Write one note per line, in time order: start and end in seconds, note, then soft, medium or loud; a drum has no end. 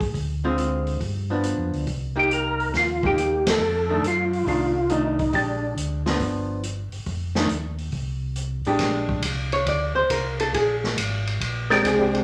0.00 0.07 F1 soft
0.00 kick soft
0.00 open hi-hat soft
0.14 0.97 D2 medium
0.14 kick soft
0.14 open hi-hat soft
0.44 0.98 D3 medium
0.44 0.98 G#3 medium
0.44 0.99 C4 medium
0.44 0.99 F4 medium
0.58 closed hi-hat soft
0.87 open hi-hat soft
1.00 1.54 G2 medium
1.00 kick soft
1.00 open hi-hat soft
1.30 1.85 F3 medium
1.30 1.85 B3 soft
1.30 1.85 D4 medium
1.43 closed hi-hat soft
1.58 1.71 F2 medium
1.73 1.86 D2 medium
1.73 open hi-hat soft
1.87 2.70 C2 medium
1.87 kick soft
1.87 open hi-hat soft
2.16 2.71 A#3 medium
2.16 2.71 D#4 medium
2.16 2.71 G4 medium
2.16 2.32 G4 medium
2.31 2.72 A#4 medium
2.31 closed hi-hat soft
2.60 open hi-hat soft
2.73 3.56 D#2 medium
2.73 3.06 F4 medium
2.73 kick soft
2.73 snare soft
2.73 open hi-hat soft
3.03 3.58 A#3 medium
3.03 3.59 D#4 medium
3.03 3.59 G4 medium
3.03 3.49 G4 medium
3.03 kick soft
3.18 closed hi-hat medium
3.47 4.06 A4 medium
3.47 snare medium
3.47 ride medium
3.60 4.00 F2 medium
3.90 4.02 D#3 soft
3.90 4.03 A3 medium
3.90 4.03 D4 medium
4.03 4.43 F#2 medium
4.03 closed hi-hat medium
4.07 4.45 F4 medium
4.33 open hi-hat soft
4.45 5.29 C2 medium
4.45 4.73 D#3 soft
4.45 4.74 A3 medium
4.45 4.74 D4 medium
4.45 4.48 E4 medium
4.45 kick soft
4.45 open hi-hat soft
4.49 4.92 F4 medium
4.89 5.16 D#3 medium
4.89 5.17 A3 medium
4.89 5.17 D4 medium
4.89 5.36 D#4 medium
4.89 closed hi-hat soft
5.19 kick soft
5.19 open hi-hat soft
5.33 5.74 A#1 medium
5.33 6.00 G#3 soft
5.33 6.01 D4 soft
5.33 5.75 D4 medium
5.33 6.00 G4 soft
5.33 kick soft
5.33 open hi-hat soft
5.76 6.17 D2 medium
5.76 closed hi-hat soft
6.06 6.61 F3 medium
6.06 6.61 B3 medium
6.06 6.61 D4 medium
6.06 snare soft
6.06 open hi-hat soft
6.19 6.88 G1 medium
6.19 kick soft
6.19 open hi-hat soft
6.63 closed hi-hat soft
6.92 7.00 G1 soft
6.92 open hi-hat soft
7.06 7.47 F1 medium
7.06 kick soft
7.06 open hi-hat soft
7.35 7.49 D#3 medium
7.35 7.49 A3 medium
7.35 7.49 D4 medium
7.35 snare medium
7.49 7.90 D#2 medium
7.49 closed hi-hat soft
7.78 open hi-hat soft
7.92 8.62 C2 medium
7.92 kick soft
7.92 open hi-hat soft
8.36 closed hi-hat soft
8.65 8.79 A1 medium
8.65 9.21 G#3 soft
8.65 9.21 D4 medium
8.65 9.21 G4 medium
8.65 open hi-hat soft
8.79 9.22 A#1 medium
8.79 kick soft
8.79 snare soft
8.79 ride soft
9.09 kick soft
9.22 9.65 C2 medium
9.22 kick soft
9.22 hi-hat pedal medium
9.22 ride medium
9.52 9.66 C#5 medium
9.52 ride soft
9.66 9.94 D2 medium
9.66 9.95 D5 medium
9.66 kick soft
9.66 ride soft
9.95 10.03 D2 soft
9.95 10.09 C5 medium
10.10 10.52 C2 medium
10.10 10.39 A#4 medium
10.10 kick soft
10.10 hi-hat pedal soft
10.10 ride medium
10.39 10.54 A4 medium
10.39 ride soft
10.53 10.95 A#1 medium
10.53 10.72 G#4 medium
10.53 kick soft
10.53 ride medium
10.84 snare soft
10.97 11.39 G#1 medium
10.97 kick soft
10.97 hi-hat pedal soft
10.97 ride medium
11.27 ride soft
11.40 11.82 A#1 medium
11.40 kick soft
11.40 ride soft
11.70 12.24 G#3 medium
11.70 12.24 C4 medium
11.70 12.24 D4 medium
11.70 12.24 G4 medium
11.70 11.83 A#4 medium
11.70 snare soft
11.84 12.24 C2 medium
11.84 12.13 G#4 medium
11.84 kick soft
11.84 hi-hat pedal soft
11.84 ride medium
12.15 ride soft